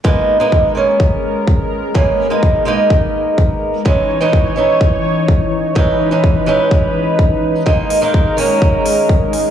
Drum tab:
HH |--------|--------|--------|--------|
BD |o-o-o-o-|o-o-o-o-|o-o-o-o-|o-o-o-o-|

HH |-o-o-o-o|
BD |o-o-o-o-|